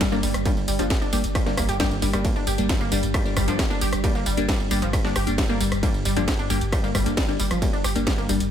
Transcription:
Already playing: G2 G3
0.01 G3, kick, snare, closed hi-hat, ride, tambourine
0.12 G1 G3 A#3 D4, tambourine
0.23 G1 G3, open hi-hat, tambourine
0.34 G1, cross-stick, closed hi-hat, tambourine
0.45 G3 A#3 D4, kick, closed hi-hat, ride, tambourine
0.57 G1, tambourine
0.68 G1 G3, open hi-hat, tambourine
0.79 G1 F3 G3 A#3 D4, closed hi-hat, tambourine
0.90 kick, snare, closed hi-hat, ride, tambourine
1.01 G1 D4, tambourine
1.13 G1 G3 A#3 D4 G4, open hi-hat, tambourine
1.24 G1, closed hi-hat, tambourine
1.35 G3, kick, cross-stick, closed hi-hat, ride, tambourine
1.46 G1 G3 A#3 D4, snare, tambourine
1.57 G1 A#3, kick, cross-stick, open hi-hat, tambourine
1.69 G1 G4, closed hi-hat, tambourine
1.80 G3 A#3 D4 G4, kick, snare, closed hi-hat, ride, tambourine
1.91 G1, tambourine
2.02 G1 G3 A#3 D4, open hi-hat, tambourine
2.13 G1 G3 A#3 D4, cross-stick, closed hi-hat, tambourine
2.25 G3 A#3 D4, kick, closed hi-hat, ride, tambourine
2.36 G1 D4, tambourine
2.47 G1 G4, open hi-hat, tambourine
2.58 G1 G3 A#3 D4, closed hi-hat, tambourine
2.69 G3, kick, snare, closed hi-hat, ride, tambourine
2.81 G1 A#3, tambourine
2.92 G1 G3 A#3 D4, open hi-hat, tambourine
3.03 G1, closed hi-hat, tambourine
3.14 G3, kick, cross-stick, closed hi-hat, ride, tambourine
3.25 G1 G3 A#3 D4, tambourine
3.37 G1 G3, kick, cross-stick, open hi-hat, tambourine
3.48 G1 F3 G3 A#3 D4, closed hi-hat, tambourine
3.59 kick, snare, closed hi-hat, ride, tambourine
3.70 G1 G3 A#3 D4, tambourine
3.81 G1 G4, open hi-hat, tambourine
3.93 G1, cross-stick, closed hi-hat, tambourine
4.04 G3 A#3 D4, kick, closed hi-hat, ride, tambourine
4.15 G1 A#3, tambourine
4.26 G1 G3, open hi-hat, tambourine
4.37 G1 G3 A#3 D4, closed hi-hat, tambourine
4.49 G3, kick, snare, closed hi-hat, ride, tambourine
4.60 G1, tambourine
4.71 G1 G3 A#3 D4, open hi-hat, tambourine
4.82 G1 F3, closed hi-hat, tambourine
4.93 kick, cross-stick, closed hi-hat, ride, tambourine
5.05 G1 G3 A#3 D4, snare, tambourine
5.16 G1 G4, cross-stick, open hi-hat, tambourine
5.27 G1 G3 A#3 D4, closed hi-hat, tambourine
5.38 G3, kick, snare, closed hi-hat, ride, tambourine
5.49 G1 G3 A#3 D4, tambourine
5.60 G1 G3, open hi-hat, tambourine
5.72 G1, cross-stick, closed hi-hat, tambourine
5.83 G3 A#3 D4, kick, closed hi-hat, ride, tambourine
5.94 G1, tambourine
6.05 G1 G3, open hi-hat, tambourine
6.16 G1 F3 G3 A#3 D4, closed hi-hat, tambourine
6.28 kick, snare, closed hi-hat, ride, tambourine
6.39 G1 D4, tambourine
6.50 G1 G3 A#3 D4 G4, open hi-hat, tambourine
6.61 G1, closed hi-hat, tambourine
6.72 G3, kick, cross-stick, closed hi-hat, ride, tambourine
6.84 G1 G3 A#3 D4, tambourine
6.95 G1 G3, kick, cross-stick, open hi-hat, tambourine
7.06 G1 G3 A#3 D4, closed hi-hat, tambourine
7.17 G3, kick, snare, closed hi-hat, ride, tambourine
7.28 G1 G3 A#3 D4, tambourine
7.40 G1 G3, open hi-hat, tambourine
7.51 G1 F3, cross-stick, closed hi-hat, tambourine
7.62 G3 A#3 D4, kick, closed hi-hat, ride, tambourine
7.73 G1 D4, tambourine
7.84 G1 G4, cross-stick, open hi-hat, tambourine
7.96 G1 G3 A#3 D4, closed hi-hat, tambourine
8.07 G3, kick, snare, closed hi-hat, ride, tambourine
8.18 G1 A#3, tambourine
8.29 G1 G3 A#3 D4, open hi-hat, tambourine
8.40 G1, closed hi-hat, tambourine

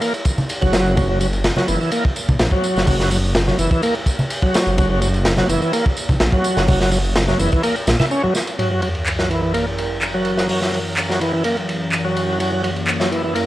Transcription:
0.01 A#3, ride, tambourine
0.14 ride, tambourine
0.25 kick, ride, tambourine
0.38 tambourine, high conga
0.49 ride, tambourine
0.61 F#1 F#3, kick, tambourine, low conga
0.73 snare, ride, tambourine
0.85 tambourine
0.97 F#3, kick, ride, tambourine, high conga
1.09 F#3
1.20 F#3, ride, tambourine
1.33 ride, tambourine
1.44 snare, ride, tambourine
1.56 F#3, snare, high conga
1.68 F#1 E3, ride, tambourine
1.81 E3, tambourine
1.92 A#3, ride, tambourine
2.05 kick
2.16 ride, tambourine
2.29 A#1, kick, tambourine, high conga
2.39 A#1, snare, ride, tambourine
2.51 F#3, kick, low conga
2.64 ride, tambourine
2.76 F#1, snare, tambourine
2.87 F#3, kick, open hi-hat, tambourine, high conga
3.00 F#3, snare
3.11 F#3, ride, tambourine
3.24 tambourine
3.35 snare, ride, tambourine
3.47 F#3, snare, high conga
3.59 F#1 E3, ride, tambourine
3.71 E3, kick, tambourine
3.82 A#3, ride, tambourine
3.95 ride
4.06 kick, ride, tambourine
4.19 tambourine, high conga
4.30 ride, tambourine
4.42 F#3, kick, low conga
4.54 snare, ride, tambourine
4.67 F#1, tambourine
4.78 F#3, kick, ride, tambourine, high conga
4.90 F#3
5.02 F#3, ride, tambourine
5.14 ride, tambourine
5.25 snare, ride, tambourine
5.37 F#3, snare, high conga
5.49 F#1 E3, ride, tambourine
5.62 E3, tambourine
5.73 A#3, ride, tambourine
5.86 kick
5.97 ride, tambourine
6.09 A#1, kick, tambourine, high conga
6.20 A#1, snare, ride, tambourine
6.32 F#3, kick, low conga
6.44 ride, tambourine
6.57 F#1, snare, tambourine
6.68 F#3, kick, open hi-hat, tambourine, high conga
6.81 F#3, snare
6.91 F#3, ride, tambourine
7.04 tambourine
7.16 snare, ride, tambourine
7.28 F#3, snare, tambourine, high conga
7.39 F#1 E3, ride, tambourine
7.52 E3, kick, tambourine
7.63 A#3, ride, tambourine
7.76 ride, tambourine
7.87 A#1, snare, ride, tambourine
8.00 E4, snare, tambourine, high conga
8.11 C#4, tambourine
8.23 F#3, low conga
8.35 snare, tambourine
8.47 ride, tambourine
8.59 F#2 E3 F#3 A#4, ride, sub drop
8.71 F#3
8.82 F#3, ride
8.95 ride
9.06 clap, ride
9.19 F#3, snare
9.30 E3, ride
9.42 E3
9.54 A#3, ride
9.78 ride
10.02 clap, ride
10.14 F#3
10.25 ride
10.38 snare
10.49 F#3, open hi-hat
10.62 F#3, snare
10.73 F#3, ride
10.97 clap, ride
11.09 F#3, snare
11.21 E3, ride
11.33 E3
11.44 A#3, ride
11.57 ride
11.69 ride
11.92 clap, ride
12.05 F#3
12.17 ride
12.40 F#3 A#3, ride
12.52 F#3
12.64 F#3, ride
12.76 ride
12.87 clap, ride
13.00 F#3, snare
13.11 E3, ride
13.24 E3
13.35 A#3, ride

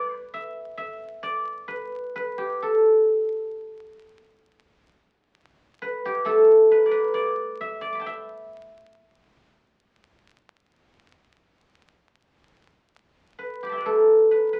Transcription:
Already playing: G4 A4 B4 D5
0.15 B4
0.34 E5
0.78 E5
1.23 D5
1.68 B4
2.16 B4
2.38 G4
2.62 A4
5.82 B4
6.05 G4
6.25 A3 A4
6.72 B4
6.86 D5
6.91 B4
7.14 D5
7.61 E5
7.81 D5
7.93 B5 D6
8.00 G5 A5
8.06 E5
13.39 B4
13.63 G4 B5 D6
13.69 E5 G5 A5
13.77 D5
13.82 A4 B4
13.86 A3
14.31 B4
14.53 B4

